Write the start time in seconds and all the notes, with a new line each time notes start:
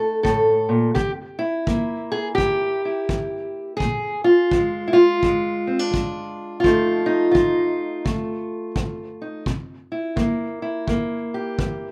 Already playing: C3 A3 D#4
0.00 A4
0.23 A2 A4, kick
0.69 A#2
0.94 C3 G4, kick
1.39 E4
1.66 E3 A#3, kick
2.12 G#4
2.35 G2 G4, kick
2.85 E4
3.09 E3, kick
3.77 G#4, kick
3.83 A#2
4.24 F4
4.51 F3 G#3, kick
4.88 E4
4.93 F4
5.23 F2 G#3, kick
5.67 C4
5.79 D4
5.91 F3, kick
6.60 F2 F4
6.64 F3 A3 D#4, kick
7.06 D#4
7.31 F3 F4, kick
8.05 C3 A3, kick
8.76 F3, kick
9.22 D#4
9.46 C3, kick
9.92 E4
10.16 E3 A#3, kick
10.62 E4
10.87 G2 A#3, kick
11.34 G4
11.59 E3, kick